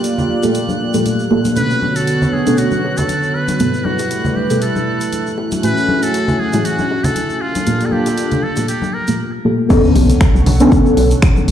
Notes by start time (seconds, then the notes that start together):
Already playing: A#3 F4 G4 A4 D5 F#6
0.04 closed hi-hat, shaker
0.18 low conga, shaker
0.29 high conga
0.43 A#3 F4 G4 A4, closed hi-hat, high bongo, shaker
0.55 closed hi-hat, shaker
0.69 high conga, shaker
0.94 A#3 F4 G4 A4, closed hi-hat, shaker
1.06 closed hi-hat, high conga, shaker
1.19 shaker
1.31 A#3 F4 G4 A4, high bongo
1.45 closed hi-hat, high conga, shaker
1.56 D3 B3 C#4 D4 F#4 A4 B4 C#5, closed hi-hat, shaker
1.70 shaker
1.82 high conga
1.96 A4, closed hi-hat, shaker
2.07 closed hi-hat, shaker
2.22 low conga, shaker
2.33 G#4, high conga
2.47 B3 C#4 D4 A4, closed hi-hat, high bongo, shaker
2.57 F#4, closed hi-hat, shaker
2.71 high conga, shaker
2.84 high bongo
2.97 A4, closed hi-hat, low conga, shaker
3.09 closed hi-hat, high conga, shaker
3.23 shaker
3.34 B4
3.48 closed hi-hat, high conga, shaker
3.60 G3 A3 B3 C4 E4 A4 B4, closed hi-hat, shaker
3.74 shaker
3.85 F#4, high conga
3.99 closed hi-hat, high bongo, shaker
4.11 closed hi-hat, shaker
4.25 low conga, shaker
4.36 G4, high conga
4.50 B3 C4 G4 A4, closed hi-hat, high bongo, shaker
4.62 A4, closed hi-hat, shaker
4.76 high conga, shaker
5.01 closed hi-hat, shaker
5.12 closed hi-hat, high conga, shaker
5.27 shaker
5.38 C#4 F#4 G#5, high bongo
5.52 closed hi-hat, high conga, shaker
5.63 A3 E4 F#4 B4 G#5, closed hi-hat, shaker
5.77 shaker
5.89 high conga
6.03 A4, closed hi-hat, shaker
6.14 closed hi-hat, shaker
6.28 low conga, shaker
6.39 G#4, high conga
6.53 A3 E4 F#4 G#5, closed hi-hat, high bongo, shaker
6.65 F#4, closed hi-hat, shaker
6.78 high conga, shaker
6.91 high bongo
7.04 A4, closed hi-hat, low conga, shaker
7.16 closed hi-hat, high conga, shaker
7.30 shaker
7.41 A#3 D4 F4 G4 A4
7.55 closed hi-hat, high conga, shaker
7.67 A#3 F4 G4 A4, closed hi-hat, shaker
7.81 closed hi-hat, shaker
7.86 A4
7.92 G4, high conga
8.06 closed hi-hat, high bongo, shaker
8.17 closed hi-hat, shaker
8.31 closed hi-hat, low conga, shaker
8.43 A4, high conga
8.56 A#3 F4 G4 A4, closed hi-hat, high bongo, shaker
8.68 G4, closed hi-hat, shaker
8.82 high conga, shaker
8.94 A#4
9.08 A#3 F4 G4 A4, closed hi-hat, shaker
9.45 A#3 F4 G4 A4
9.70 B3 C#4 D4 A4 C#5 F#5, kick, closed hi-hat, crash, impact, high bongo, high conga, shaker
9.84 shaker
9.96 B1, open hi-hat, high bongo
10.09 closed hi-hat, high conga, shaker
10.21 finger snap, kick, closed hi-hat, shaker
10.35 B1, high bongo, shaker
10.46 B1, open hi-hat, high conga, low conga
10.60 B3 C#4 D4 A4, closed hi-hat, high bongo, shaker
10.72 kick, closed hi-hat, shaker
10.86 shaker
10.97 B1, open hi-hat, high bongo, high conga
11.11 closed hi-hat, shaker
11.22 finger snap, kick, closed hi-hat, high bongo, shaker
11.36 high conga, shaker
11.48 B1, open hi-hat